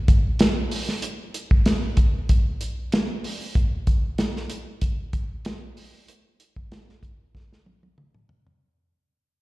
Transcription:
0, 0, Header, 1, 2, 480
1, 0, Start_track
1, 0, Tempo, 630915
1, 782, Time_signature, 4, 2, 24, 8
1, 7160, End_track
2, 0, Start_track
2, 0, Title_t, "Drums"
2, 62, Note_on_c, 9, 42, 69
2, 63, Note_on_c, 9, 36, 92
2, 138, Note_off_c, 9, 42, 0
2, 139, Note_off_c, 9, 36, 0
2, 299, Note_on_c, 9, 42, 82
2, 309, Note_on_c, 9, 38, 107
2, 376, Note_off_c, 9, 42, 0
2, 385, Note_off_c, 9, 38, 0
2, 544, Note_on_c, 9, 46, 83
2, 620, Note_off_c, 9, 46, 0
2, 674, Note_on_c, 9, 38, 36
2, 750, Note_off_c, 9, 38, 0
2, 779, Note_on_c, 9, 42, 94
2, 855, Note_off_c, 9, 42, 0
2, 1022, Note_on_c, 9, 42, 67
2, 1098, Note_off_c, 9, 42, 0
2, 1149, Note_on_c, 9, 36, 95
2, 1225, Note_off_c, 9, 36, 0
2, 1260, Note_on_c, 9, 42, 78
2, 1263, Note_on_c, 9, 38, 99
2, 1336, Note_off_c, 9, 42, 0
2, 1340, Note_off_c, 9, 38, 0
2, 1498, Note_on_c, 9, 42, 83
2, 1501, Note_on_c, 9, 36, 95
2, 1574, Note_off_c, 9, 42, 0
2, 1577, Note_off_c, 9, 36, 0
2, 1744, Note_on_c, 9, 42, 89
2, 1746, Note_on_c, 9, 36, 86
2, 1820, Note_off_c, 9, 42, 0
2, 1822, Note_off_c, 9, 36, 0
2, 1983, Note_on_c, 9, 42, 68
2, 2060, Note_off_c, 9, 42, 0
2, 2224, Note_on_c, 9, 42, 86
2, 2233, Note_on_c, 9, 38, 110
2, 2300, Note_off_c, 9, 42, 0
2, 2310, Note_off_c, 9, 38, 0
2, 2467, Note_on_c, 9, 46, 86
2, 2543, Note_off_c, 9, 46, 0
2, 2704, Note_on_c, 9, 36, 107
2, 2705, Note_on_c, 9, 42, 89
2, 2780, Note_off_c, 9, 36, 0
2, 2781, Note_off_c, 9, 42, 0
2, 2944, Note_on_c, 9, 42, 65
2, 2947, Note_on_c, 9, 36, 83
2, 3020, Note_off_c, 9, 42, 0
2, 3023, Note_off_c, 9, 36, 0
2, 3182, Note_on_c, 9, 42, 81
2, 3186, Note_on_c, 9, 38, 88
2, 3259, Note_off_c, 9, 42, 0
2, 3262, Note_off_c, 9, 38, 0
2, 3320, Note_on_c, 9, 38, 31
2, 3396, Note_off_c, 9, 38, 0
2, 3420, Note_on_c, 9, 42, 83
2, 3496, Note_off_c, 9, 42, 0
2, 3663, Note_on_c, 9, 42, 87
2, 3666, Note_on_c, 9, 36, 83
2, 3739, Note_off_c, 9, 42, 0
2, 3742, Note_off_c, 9, 36, 0
2, 3904, Note_on_c, 9, 42, 70
2, 3905, Note_on_c, 9, 36, 89
2, 3980, Note_off_c, 9, 42, 0
2, 3982, Note_off_c, 9, 36, 0
2, 4146, Note_on_c, 9, 42, 82
2, 4155, Note_on_c, 9, 38, 106
2, 4222, Note_off_c, 9, 42, 0
2, 4231, Note_off_c, 9, 38, 0
2, 4389, Note_on_c, 9, 46, 73
2, 4465, Note_off_c, 9, 46, 0
2, 4628, Note_on_c, 9, 42, 84
2, 4704, Note_off_c, 9, 42, 0
2, 4868, Note_on_c, 9, 42, 65
2, 4944, Note_off_c, 9, 42, 0
2, 4994, Note_on_c, 9, 36, 83
2, 5070, Note_off_c, 9, 36, 0
2, 5110, Note_on_c, 9, 42, 78
2, 5113, Note_on_c, 9, 38, 96
2, 5186, Note_off_c, 9, 42, 0
2, 5189, Note_off_c, 9, 38, 0
2, 5242, Note_on_c, 9, 38, 33
2, 5318, Note_off_c, 9, 38, 0
2, 5346, Note_on_c, 9, 36, 95
2, 5348, Note_on_c, 9, 42, 81
2, 5422, Note_off_c, 9, 36, 0
2, 5425, Note_off_c, 9, 42, 0
2, 5590, Note_on_c, 9, 36, 84
2, 5595, Note_on_c, 9, 38, 53
2, 5666, Note_off_c, 9, 36, 0
2, 5672, Note_off_c, 9, 38, 0
2, 5726, Note_on_c, 9, 38, 51
2, 5802, Note_off_c, 9, 38, 0
2, 5830, Note_on_c, 9, 48, 65
2, 5906, Note_off_c, 9, 48, 0
2, 5958, Note_on_c, 9, 48, 60
2, 6034, Note_off_c, 9, 48, 0
2, 6070, Note_on_c, 9, 47, 80
2, 6146, Note_off_c, 9, 47, 0
2, 6197, Note_on_c, 9, 45, 73
2, 6273, Note_off_c, 9, 45, 0
2, 6308, Note_on_c, 9, 43, 94
2, 6384, Note_off_c, 9, 43, 0
2, 6441, Note_on_c, 9, 43, 90
2, 6517, Note_off_c, 9, 43, 0
2, 7160, End_track
0, 0, End_of_file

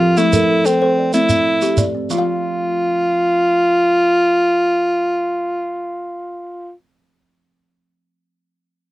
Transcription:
0, 0, Header, 1, 5, 480
1, 0, Start_track
1, 0, Key_signature, -1, "major"
1, 0, Tempo, 321716
1, 249, Time_signature, 12, 3, 24, 8
1, 13304, End_track
2, 0, Start_track
2, 0, Title_t, "Kalimba"
2, 0, Program_c, 0, 108
2, 0, Note_on_c, 0, 65, 73
2, 1, Note_on_c, 0, 53, 75
2, 485, Note_on_c, 0, 69, 93
2, 487, Note_off_c, 0, 53, 0
2, 487, Note_off_c, 0, 65, 0
2, 488, Note_on_c, 0, 72, 77
2, 715, Note_off_c, 0, 69, 0
2, 733, Note_on_c, 0, 69, 69
2, 1202, Note_off_c, 0, 69, 0
2, 1213, Note_off_c, 0, 72, 0
2, 1220, Note_on_c, 0, 69, 67
2, 1465, Note_on_c, 0, 74, 58
2, 1689, Note_on_c, 0, 57, 80
2, 1699, Note_off_c, 0, 69, 0
2, 1934, Note_off_c, 0, 57, 0
2, 2179, Note_on_c, 0, 76, 69
2, 2183, Note_off_c, 0, 74, 0
2, 2416, Note_on_c, 0, 60, 80
2, 2660, Note_on_c, 0, 72, 72
2, 2886, Note_off_c, 0, 60, 0
2, 2901, Note_off_c, 0, 76, 0
2, 2904, Note_on_c, 0, 60, 75
2, 3141, Note_on_c, 0, 53, 74
2, 3206, Note_on_c, 0, 65, 71
2, 3263, Note_on_c, 0, 77, 77
2, 3382, Note_off_c, 0, 72, 0
2, 3383, Note_off_c, 0, 60, 0
2, 10516, Note_off_c, 0, 53, 0
2, 10581, Note_off_c, 0, 65, 0
2, 10638, Note_off_c, 0, 77, 0
2, 13304, End_track
3, 0, Start_track
3, 0, Title_t, "Kalimba"
3, 0, Program_c, 1, 108
3, 0, Note_on_c, 1, 67, 62
3, 265, Note_on_c, 1, 57, 94
3, 265, Note_on_c, 1, 69, 79
3, 494, Note_off_c, 1, 67, 0
3, 494, Note_on_c, 1, 70, 59
3, 740, Note_off_c, 1, 57, 0
3, 961, Note_off_c, 1, 69, 0
3, 979, Note_on_c, 1, 69, 81
3, 1216, Note_off_c, 1, 70, 0
3, 1221, Note_on_c, 1, 72, 70
3, 1458, Note_off_c, 1, 69, 0
3, 1702, Note_on_c, 1, 60, 79
3, 1938, Note_on_c, 1, 76, 55
3, 1940, Note_off_c, 1, 72, 0
3, 2181, Note_off_c, 1, 60, 0
3, 2422, Note_on_c, 1, 67, 73
3, 2657, Note_on_c, 1, 74, 60
3, 2660, Note_off_c, 1, 76, 0
3, 2902, Note_off_c, 1, 67, 0
3, 3138, Note_on_c, 1, 53, 79
3, 3196, Note_on_c, 1, 65, 70
3, 3259, Note_on_c, 1, 77, 77
3, 3380, Note_off_c, 1, 74, 0
3, 10512, Note_off_c, 1, 53, 0
3, 10570, Note_off_c, 1, 65, 0
3, 10633, Note_off_c, 1, 77, 0
3, 13304, End_track
4, 0, Start_track
4, 0, Title_t, "Alto saxophone"
4, 0, Program_c, 2, 65
4, 0, Note_on_c, 2, 65, 104
4, 264, Note_on_c, 2, 64, 102
4, 286, Note_off_c, 2, 65, 0
4, 986, Note_on_c, 2, 60, 82
4, 1008, Note_off_c, 2, 64, 0
4, 1691, Note_off_c, 2, 60, 0
4, 1700, Note_on_c, 2, 64, 89
4, 2842, Note_off_c, 2, 64, 0
4, 3150, Note_on_c, 2, 65, 99
4, 10038, Note_off_c, 2, 65, 0
4, 13304, End_track
5, 0, Start_track
5, 0, Title_t, "Shekere"
5, 255, Note_on_c, 9, 82, 66
5, 404, Note_off_c, 9, 82, 0
5, 490, Note_on_c, 9, 82, 88
5, 639, Note_off_c, 9, 82, 0
5, 974, Note_on_c, 9, 82, 61
5, 1123, Note_off_c, 9, 82, 0
5, 1689, Note_on_c, 9, 82, 61
5, 1838, Note_off_c, 9, 82, 0
5, 1929, Note_on_c, 9, 82, 71
5, 2078, Note_off_c, 9, 82, 0
5, 2411, Note_on_c, 9, 82, 53
5, 2560, Note_off_c, 9, 82, 0
5, 2646, Note_on_c, 9, 82, 80
5, 2795, Note_off_c, 9, 82, 0
5, 3137, Note_on_c, 9, 82, 74
5, 3286, Note_off_c, 9, 82, 0
5, 13304, End_track
0, 0, End_of_file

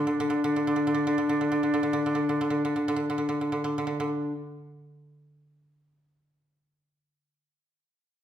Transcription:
0, 0, Header, 1, 4, 480
1, 0, Start_track
1, 0, Tempo, 1224490
1, 1240, Tempo, 1268499
1, 3158, End_track
2, 0, Start_track
2, 0, Title_t, "Recorder"
2, 0, Program_c, 0, 74
2, 0, Note_on_c, 0, 62, 70
2, 1680, Note_off_c, 0, 62, 0
2, 3158, End_track
3, 0, Start_track
3, 0, Title_t, "Koto"
3, 0, Program_c, 1, 107
3, 0, Note_on_c, 1, 50, 41
3, 0, Note_on_c, 1, 57, 41
3, 0, Note_on_c, 1, 62, 42
3, 1655, Note_off_c, 1, 50, 0
3, 1677, Note_off_c, 1, 57, 0
3, 1694, Note_off_c, 1, 62, 0
3, 3158, End_track
4, 0, Start_track
4, 0, Title_t, "Koto"
4, 0, Program_c, 2, 107
4, 27, Note_on_c, 2, 50, 46
4, 77, Note_off_c, 2, 50, 0
4, 78, Note_on_c, 2, 50, 56
4, 116, Note_off_c, 2, 50, 0
4, 117, Note_on_c, 2, 50, 48
4, 172, Note_off_c, 2, 50, 0
4, 173, Note_on_c, 2, 50, 57
4, 219, Note_off_c, 2, 50, 0
4, 221, Note_on_c, 2, 50, 41
4, 262, Note_off_c, 2, 50, 0
4, 264, Note_on_c, 2, 50, 48
4, 296, Note_off_c, 2, 50, 0
4, 298, Note_on_c, 2, 50, 42
4, 339, Note_off_c, 2, 50, 0
4, 341, Note_on_c, 2, 50, 47
4, 369, Note_off_c, 2, 50, 0
4, 370, Note_on_c, 2, 50, 43
4, 417, Note_off_c, 2, 50, 0
4, 419, Note_on_c, 2, 50, 52
4, 461, Note_off_c, 2, 50, 0
4, 462, Note_on_c, 2, 50, 43
4, 506, Note_off_c, 2, 50, 0
4, 507, Note_on_c, 2, 50, 47
4, 551, Note_off_c, 2, 50, 0
4, 553, Note_on_c, 2, 50, 43
4, 593, Note_off_c, 2, 50, 0
4, 594, Note_on_c, 2, 50, 44
4, 638, Note_off_c, 2, 50, 0
4, 639, Note_on_c, 2, 50, 40
4, 679, Note_off_c, 2, 50, 0
4, 681, Note_on_c, 2, 50, 49
4, 716, Note_off_c, 2, 50, 0
4, 717, Note_on_c, 2, 50, 42
4, 756, Note_off_c, 2, 50, 0
4, 757, Note_on_c, 2, 50, 51
4, 806, Note_off_c, 2, 50, 0
4, 808, Note_on_c, 2, 50, 43
4, 841, Note_off_c, 2, 50, 0
4, 843, Note_on_c, 2, 50, 47
4, 897, Note_off_c, 2, 50, 0
4, 898, Note_on_c, 2, 50, 45
4, 943, Note_off_c, 2, 50, 0
4, 945, Note_on_c, 2, 50, 49
4, 980, Note_off_c, 2, 50, 0
4, 981, Note_on_c, 2, 50, 43
4, 1036, Note_off_c, 2, 50, 0
4, 1038, Note_on_c, 2, 50, 45
4, 1080, Note_off_c, 2, 50, 0
4, 1082, Note_on_c, 2, 50, 43
4, 1128, Note_off_c, 2, 50, 0
4, 1130, Note_on_c, 2, 50, 51
4, 1160, Note_off_c, 2, 50, 0
4, 1162, Note_on_c, 2, 50, 45
4, 1213, Note_off_c, 2, 50, 0
4, 1214, Note_on_c, 2, 50, 52
4, 1245, Note_off_c, 2, 50, 0
4, 1246, Note_on_c, 2, 50, 41
4, 1286, Note_off_c, 2, 50, 0
4, 1287, Note_on_c, 2, 50, 46
4, 1333, Note_off_c, 2, 50, 0
4, 1334, Note_on_c, 2, 50, 41
4, 1374, Note_off_c, 2, 50, 0
4, 1376, Note_on_c, 2, 50, 50
4, 1420, Note_off_c, 2, 50, 0
4, 1421, Note_on_c, 2, 50, 47
4, 1472, Note_off_c, 2, 50, 0
4, 1473, Note_on_c, 2, 50, 52
4, 1505, Note_off_c, 2, 50, 0
4, 1507, Note_on_c, 2, 50, 48
4, 1555, Note_off_c, 2, 50, 0
4, 1556, Note_on_c, 2, 50, 55
4, 2835, Note_off_c, 2, 50, 0
4, 3158, End_track
0, 0, End_of_file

